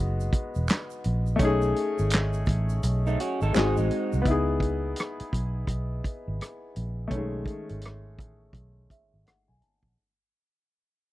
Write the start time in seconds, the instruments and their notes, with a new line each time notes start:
Already playing: fingered electric bass F#1, upright piano G#3 B3 D#4 F#4
0.21 shaker
0.33 kick, closed hi-hat
0.55 fingered electric bass E1, shaker
0.68 finger snap, snare, clap, closed hi-hat, shaker
0.90 shaker
1.04 fingered electric bass A#1, closed hi-hat
1.26 shaker
1.36 upright piano A3 C#4, kick, closed hi-hat, shaker
1.40 fingered electric bass B1, upright piano D#4
1.45 upright piano G#4
1.62 shaker
1.76 closed hi-hat
1.99 fingered electric bass G#1, shaker
2.10 finger snap, closed hi-hat, shaker
2.14 snare, clap
2.33 shaker
2.46 fingered electric bass A1, kick, closed hi-hat, shaker
2.69 shaker
2.83 fingered electric bass B1, closed hi-hat, shaker
3.07 clean electric guitar A3 D#4, shaker
3.20 clean electric guitar C#4 F#4, closed hi-hat
3.41 fingered electric bass G#1, clean electric guitar D#4 A4, shaker
3.53 fingered electric bass G#1, upright piano G#3 C4 D#4, clean electric guitar D#4 G#4, finger snap, snare, closed hi-hat, shaker
3.57 upright piano F#4, clap
3.77 fingered electric bass A1, clean electric guitar G#3 D#4, shaker
3.91 closed hi-hat
4.13 fingered electric bass C2, shaker
4.22 upright piano B3 D#4, kick
4.26 fingered electric bass C#2, upright piano E4, closed hi-hat
4.31 upright piano G#4
4.60 kick, closed hi-hat
4.96 closed hi-hat
5.00 cross-stick
5.20 muted fingered electric bass stroke, closed hi-hat
5.33 fingered electric bass B1, kick, closed hi-hat
5.67 fingered electric bass B1, kick, closed hi-hat
6.04 kick, closed hi-hat
6.28 fingered electric bass G#1
6.41 cross-stick, closed hi-hat
6.76 fingered electric bass A#1, closed hi-hat
7.08 fingered electric bass B1, upright piano A3 C#4, kick, closed hi-hat
7.14 upright piano D#3 G#3
7.46 kick, closed hi-hat
7.69 fingered electric bass G#1, closed hi-hat
7.81 closed hi-hat
7.86 cross-stick
8.19 fingered electric bass A1, kick, closed hi-hat
8.53 fingered electric bass B1, kick, closed hi-hat
8.90 upright piano E5, kick, closed hi-hat
9.14 fingered electric bass G#1
9.26 upright piano F#5, cross-stick, closed hi-hat
9.48 fingered electric bass B1, upright piano G#5
9.62 closed hi-hat
9.83 fingered electric bass A#1, kick